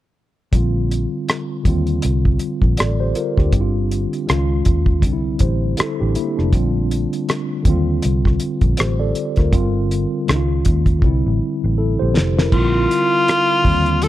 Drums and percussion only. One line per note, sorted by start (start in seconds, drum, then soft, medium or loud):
0.53 kick medium
0.53 closed hi-hat medium
0.91 closed hi-hat soft
1.28 cross-stick medium
1.28 closed hi-hat medium
1.65 kick medium
1.65 closed hi-hat medium
1.87 closed hi-hat soft
2.02 closed hi-hat medium
2.25 kick medium
2.39 closed hi-hat medium
2.62 kick medium
2.77 cross-stick medium
2.77 closed hi-hat medium
3.15 closed hi-hat soft
3.37 kick medium
3.37 cross-stick soft
3.53 kick medium
3.53 closed hi-hat medium
3.91 closed hi-hat medium
4.13 closed hi-hat soft
4.29 cross-stick medium
4.29 closed hi-hat medium
4.65 kick medium
4.65 closed hi-hat medium
4.86 kick medium
5.02 kick medium
5.02 closed hi-hat medium
5.39 kick medium
5.39 closed hi-hat medium
5.77 cross-stick loud
5.77 closed hi-hat medium
6.15 closed hi-hat medium
6.39 cross-stick soft
6.53 kick medium
6.53 closed hi-hat medium
6.91 closed hi-hat medium
7.13 closed hi-hat soft
7.29 cross-stick medium
7.29 closed hi-hat medium
7.65 kick medium
7.65 closed hi-hat medium
8.02 closed hi-hat medium
8.25 kick medium
8.25 cross-stick soft
8.40 closed hi-hat medium
8.61 kick medium
8.61 closed hi-hat soft
8.77 cross-stick medium
8.77 closed hi-hat medium
9.15 closed hi-hat medium
9.36 kick medium
9.36 cross-stick soft
9.36 closed hi-hat soft
9.53 kick medium
9.53 closed hi-hat medium
9.91 closed hi-hat medium
10.28 cross-stick medium
10.28 closed hi-hat medium
10.65 kick medium
10.65 closed hi-hat medium
10.86 kick medium
10.86 closed hi-hat soft
11.02 kick medium
12.17 snare medium
12.39 snare medium
12.52 kick loud
12.52 crash medium
12.91 closed hi-hat medium
13.28 cross-stick medium
13.28 closed hi-hat medium
13.65 kick medium
13.65 open hi-hat soft
13.86 closed hi-hat soft
14.02 closed hi-hat medium